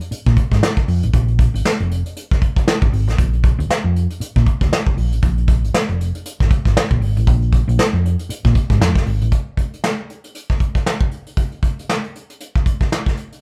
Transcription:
0.01 closed hi-hat
0.11 muted fingered electric bass stroke, closed hi-hat
0.26 fingered electric bass A#2, kick, snare
0.37 kick, closed hi-hat
0.52 fingered electric bass G#2, kick, snare, closed hi-hat
0.63 snare
0.77 kick, snare, closed hi-hat
0.88 fingered electric bass F2, open hi-hat
1.03 fingered electric bass A1, closed hi-hat
1.13 fingered electric bass A#1, kick, closed hi-hat
1.28 closed hi-hat
1.39 kick, closed hi-hat
1.54 fingered electric bass G#1, closed hi-hat
1.65 muted fingered electric bass stroke, snare
1.80 fingered electric bass F1, closed hi-hat
1.91 closed hi-hat
2.06 closed hi-hat
2.16 closed hi-hat
2.31 kick, snare, closed hi-hat
2.42 kick, closed hi-hat
2.56 kick, snare, closed hi-hat
2.68 snare
2.82 fingered electric bass G#1, kick, closed hi-hat
2.92 fingered electric bass G#1, open hi-hat
3.07 fingered electric bass A1, snare, closed hi-hat
3.18 fingered electric bass A#1, kick, closed hi-hat
3.33 closed hi-hat
3.44 kick, closed hi-hat
3.59 fingered electric bass D2, closed hi-hat
3.69 muted fingered electric bass stroke, snare
3.84 fingered electric bass F2
3.96 closed hi-hat
4.10 closed hi-hat
4.20 muted fingered electric bass stroke, closed hi-hat
4.36 fingered electric bass A#2, kick, snare, closed hi-hat
4.46 kick, closed hi-hat
4.61 fingered electric bass D2, kick, snare, closed hi-hat
4.73 snare
4.87 kick
4.97 fingered electric bass A#1, open hi-hat
5.12 fingered electric bass A1, closed hi-hat
5.22 fingered electric bass A#1, kick, closed hi-hat
5.37 closed hi-hat
5.48 kick, closed hi-hat
5.64 fingered electric bass G#1, closed hi-hat
5.73 muted fingered electric bass stroke, snare
5.89 fingered electric bass F1, closed hi-hat
6.01 closed hi-hat
6.15 closed hi-hat
6.25 closed hi-hat
6.40 fingered electric bass G#1, kick, snare, closed hi-hat
6.51 kick, closed hi-hat
6.65 fingered electric bass G#1, kick, snare, closed hi-hat
6.77 snare
6.91 fingered electric bass A#1, kick
7.01 fingered electric bass G#1, open hi-hat
7.17 fingered electric bass A1, closed hi-hat
7.27 fingered electric bass A#1, kick, closed hi-hat
7.42 closed hi-hat
7.53 kick, closed hi-hat
7.68 fingered electric bass A#1, closed hi-hat
7.78 muted fingered electric bass stroke, snare
7.93 fingered electric bass F2, closed hi-hat
8.05 closed hi-hat
8.19 closed hi-hat
8.29 muted fingered electric bass stroke, closed hi-hat
8.45 fingered electric bass A#2, kick, snare, closed hi-hat
8.55 kick, closed hi-hat
8.70 fingered electric bass G#2, kick, snare, closed hi-hat
8.80 fingered electric bass F2, snare
8.96 kick, snare, closed hi-hat
9.06 fingered electric bass G#1, open hi-hat
9.21 fingered electric bass A1, closed hi-hat
9.32 kick, closed hi-hat
9.57 kick, closed hi-hat
9.73 closed hi-hat
9.84 snare
10.10 closed hi-hat
10.24 closed hi-hat
10.35 closed hi-hat
10.50 kick, snare
10.60 kick, closed hi-hat
10.75 kick, snare, closed hi-hat
10.86 snare
11.01 kick, closed hi-hat
11.11 closed hi-hat
11.26 closed hi-hat
11.37 kick, closed hi-hat
11.52 closed hi-hat
11.63 kick, closed hi-hat
11.79 closed hi-hat
11.89 snare
12.04 closed hi-hat
12.15 closed hi-hat
12.30 closed hi-hat
12.40 closed hi-hat
12.56 kick, snare
12.66 kick, closed hi-hat
12.81 kick, snare, closed hi-hat
12.92 snare
13.06 kick, snare
13.17 closed hi-hat
13.32 closed hi-hat

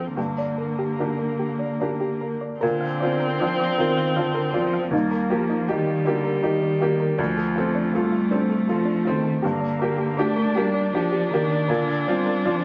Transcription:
Already playing: cello F3, viola C4, upright piano C4 F4 A4
0.16 upright piano G2, cello D3, viola A#3, synth pluck G4
0.38 synth pluck D5
0.58 synth pluck A#4
0.79 synth pluck G4
0.99 upright piano A#3 D4 G4, synth pluck A#4
1.19 synth pluck A#4
1.39 synth pluck G4
1.59 synth pluck D5
1.80 upright piano A#3 D4 G4, synth pluck D5
2.01 synth pluck G4
2.21 synth pluck A#4
2.41 synth pluck D5
2.60 upright piano A#2, cello D3, viola C4, synth pluck A#4
2.81 synth pluck F5
3.00 upright piano C4 F4, synth pluck D5
3.20 synth pluck A#4
3.40 cello F3, upright piano D4 F4, synth pluck D5
3.60 synth pluck D5
3.78 cello D#3, upright piano C4 F4, synth pluck A#4
3.97 synth pluck F5
4.16 cello D3, upright piano D4 F4, synth pluck F5
4.35 synth pluck A#4
4.53 cello F3, upright piano C4 F4, synth pluck D5
4.73 synth pluck F5
4.91 upright piano D#2, cello G3, viola A#3, synth pluck D#4
5.11 synth pluck A#4
5.30 cello F3, upright piano A#3 G4, synth pluck G4
5.50 synth pluck D#4
5.68 cello D#3, viola G3, upright piano D#4 G4, synth pluck G4
5.87 synth pluck G4
6.05 cello D3, upright piano A#3 G4, synth pluck D#4
6.24 synth pluck A#4
6.42 cello D#3, upright piano D#4 G4, synth pluck A#4
6.62 synth pluck D#4
6.80 upright piano A#3 G4, synth pluck G4
7.00 synth pluck A#4
7.18 upright piano D2, cello F3, viola A3, synth pluck D4
7.37 synth pluck A4
7.56 upright piano C4 A4, synth pluck F4
7.75 synth pluck D4
7.93 cello G3, synth pluck F4, upright piano F4 A4
8.12 synth pluck F4
8.31 upright piano C4 A4, synth pluck D4
8.49 synth pluck A4
8.68 cello F3, upright piano F4 A4, synth pluck A4
8.85 synth pluck D4
9.05 cello D#3, upright piano C4 A4, synth pluck F4
9.24 synth pluck A4
9.42 upright piano G2, cello D3, viola A#3, synth pluck G4
9.60 synth pluck D5
9.79 upright piano A#3 G4, synth pluck A#4
9.98 synth pluck G4
10.17 cello A3, viola D4, upright piano D4 G4, synth pluck A#4
10.36 synth pluck A#4
10.55 cello G3, upright piano A#3 G4, synth pluck G4
10.74 synth pluck D5
10.93 cello F3, viola D4, upright piano D4 G4, synth pluck D5
11.12 synth pluck G4
11.30 cello D#3, upright piano A#3 G4, synth pluck A#4
11.50 synth pluck D5
11.68 upright piano A#2, cello D3, synth pluck A#4
11.88 synth pluck F5
12.06 cello G3, upright piano C4 F4, synth pluck D5
12.26 synth pluck A#4
12.44 cello F3, upright piano D4 F4, synth pluck D5

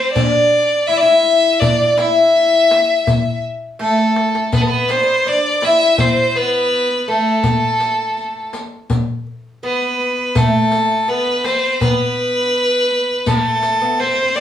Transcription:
Already playing: oud C4, sitar C4, violin C5
0.13 oud D4, sitar D4, violin D5, riq, darbuka dum
0.34 darbuka ka
0.53 darbuka ka
0.87 sitar E4, oud E4, violin E5, darbuka ka
0.97 violin D5 E5
1.01 sitar E4, oud E4
1.07 riq
1.25 riq
1.43 darbuka ka
1.60 sitar D4, oud D4, violin D5, riq, darbuka dum
1.97 sitar E4, oud E4, violin E5, riq, darbuka tek
2.35 riq, darbuka ka
2.53 riq, darbuka ka
2.71 riq, darbuka tek
3.07 riq, darbuka dum
3.79 sitar A3, oud A3, violin A4, riq, darbuka tek
3.98 riq, darbuka ka
4.16 darbuka tek
4.35 riq, darbuka ka
4.52 sitar B3, oud B3, violin B4, riq, darbuka dum
4.61 violin A4
4.67 sitar B3, violin B4
4.88 oud C4, violin C5, riq, darbuka tek
4.96 oud D4
5.04 oud C4
5.25 sitar D4, oud D4, violin D5, riq
5.45 darbuka ka
5.62 sitar E4, oud E4, violin E5, riq, darbuka tek
5.98 sitar C4, oud C4, violin C5, riq, darbuka dum
6.16 darbuka ka
6.35 sitar B3, oud B3, violin B4, darbuka ka
6.71 darbuka ka
6.90 riq
7.08 oud A3, sitar A3, violin A4, riq
7.26 darbuka ka
7.44 riq, darbuka dum
7.80 riq, darbuka tek
8.17 riq
8.35 darbuka ka
8.53 riq, darbuka tek
8.90 riq, darbuka dum
9.08 darbuka ka
9.27 darbuka ka
9.62 oud B3, sitar B3, violin B4, darbuka ka
9.81 riq
9.99 riq
10.17 darbuka ka
10.35 oud A3, sitar A3, violin A4, riq, darbuka dum
10.72 riq, darbuka tek
11.08 oud B3, sitar B3, violin B4, riq
11.26 darbuka ka
11.44 sitar C4, violin C5, riq, darbuka tek
11.81 oud B3, sitar B3, violin B4, riq, darbuka dum
12.00 darbuka ka
12.18 darbuka ka
12.54 darbuka ka
12.91 riq
13.09 darbuka ka
13.26 oud A3, sitar A3, violin A4, riq, darbuka dum
13.62 riq, darbuka tek
13.81 oud B3
13.99 sitar C4, oud C4, violin C5, riq
14.15 oud C4, riq, darbuka ka
14.23 oud C4
14.30 oud C4
14.35 violin D5, riq, darbuka tek

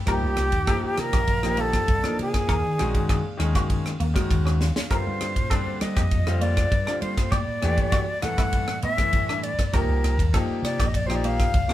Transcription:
0.06 slap bass C2, ambient pad C3 D#3 A#3 D5 F5, grand piano F3 A#3 D#4 G4, flute G4, clean electric guitar A#4, kick, cross-stick, ride
0.23 slap bass C2
0.37 slap bass C2, cross-stick, ride
0.52 slap bass D#2, kick, ride
0.67 grand piano F3 A#3 D#4 G4, clean electric guitar A4, kick, cross-stick, ride
0.83 muted slap bass stroke
0.97 slap bass C3, flute A#4, cross-stick, ride
1.13 slap bass A#1, clean electric guitar G4, kick, cross-stick, ride
1.27 kick, ride
1.43 grand piano F3 A#3 D#4 G4, cross-stick
1.57 clean electric guitar A#3, flute A4, ride
1.73 kick, cross-stick, ride
1.88 slap bass C2, kick, ride
2.04 grand piano F3 A#3 D#4 A#4, clean electric guitar D4, cross-stick
2.19 slap bass C3, flute G#4, ride
2.34 kick, cross-stick, ride
2.48 slap bass D#2, ambient pad D#3 C#4 F#4 G#4, clean electric guitar A#4, kick, cross-stick, ride
2.65 slap bass D#3
2.78 slap bass A#1, grand piano D#3 G#3 C#4 F#4, cross-stick, ride
2.95 slap bass D#3, kick, ride
3.09 clean electric guitar G#4, kick, cross-stick, ride
3.37 slap bass D#2, grand piano D#3 G#3 C#4 G#4, cross-stick, ride
3.55 slap bass D#3, clean electric guitar F#4, kick, cross-stick, ride
3.70 kick, ride
3.86 cross-stick
4.00 slap bass D#2, clean electric guitar A#3, ride
4.14 grand piano D#3 G#3 C#4 F#4, kick, cross-stick, ride
4.30 slap bass D#2, kick, ride
4.46 clean electric guitar C#4, cross-stick
4.61 snare
4.76 snare
4.90 slap bass G2, grand piano D3 G3 C4 F4, ambient pad G3 A#3 F4, clean electric guitar A#4, flute C5, kick, cross-stick, ride
5.07 slap bass G2
5.21 slap bass G2, cross-stick, ride
5.36 slap bass A#2, kick, ride
5.50 grand piano D3 G3 C4 D4, clean electric guitar A4, kick, cross-stick, ride
5.67 muted slap bass stroke
5.81 slap bass G3, flute D#5, cross-stick, ride
5.96 slap bass F2, clean electric guitar G4, kick, cross-stick, ride
6.11 kick, ride
6.27 grand piano D3 G3 C4 F4, cross-stick
6.41 clean electric guitar A#3, flute D5, ride
6.57 kick, cross-stick, ride
6.72 slap bass G2, kick, ride
6.86 grand piano D3 G3 C4 F4, clean electric guitar D4, cross-stick
7.02 slap bass G3, flute C5, ride
7.17 kick, cross-stick, ride
7.32 slap bass A2, ambient pad C3 A3, clean electric guitar G4, flute D5, kick, cross-stick, ride
7.48 slap bass A2
7.62 slap bass E2, grand piano E3 A3 D4 G4, cross-stick, ride
7.77 slap bass A2, kick, ride
7.92 clean electric guitar F#4, kick, cross-stick, ride
8.22 slap bass A2, grand piano E3 A3 D4 A4, flute F#5, cross-stick, ride
8.38 slap bass A2, clean electric guitar E4, kick, cross-stick, ride
8.53 kick, ride
8.68 cross-stick
8.82 slap bass A2, clean electric guitar B3, flute E5, ride
8.97 grand piano E3 A3 D4 E4, kick, cross-stick, ride
9.13 slap bass A2, kick, ride
9.29 clean electric guitar D4, cross-stick
9.43 flute D5, ride
9.59 muted slap bass stroke, kick, cross-stick, ride
9.72 slap bass C2, ambient pad C3 D#3 F3 A#3 D5, grand piano F3 A#3 D#4 G4, clean electric guitar A#4, flute A#4, kick, cross-stick, ride
9.88 slap bass C2
10.03 slap bass C2, cross-stick, ride
10.19 slap bass D#2, kick, ride
10.33 grand piano F3 A#3 D#4 G4, clean electric guitar A4, kick, cross-stick, ride
10.49 muted slap bass stroke
10.62 slap bass C3, flute D5, cross-stick, ride
10.80 slap bass A#1, clean electric guitar G4, kick, cross-stick, ride
10.87 flute D#5
10.94 flute D5, kick, ride
11.06 grand piano F3 A#3 D#4 G4, flute C5, cross-stick
11.16 flute D5
11.24 clean electric guitar A#3, flute F5, ride
11.39 kick, cross-stick, ride
11.54 slap bass C2, kick, ride
11.68 grand piano F3 A#3 D#4 G4, clean electric guitar D4, cross-stick

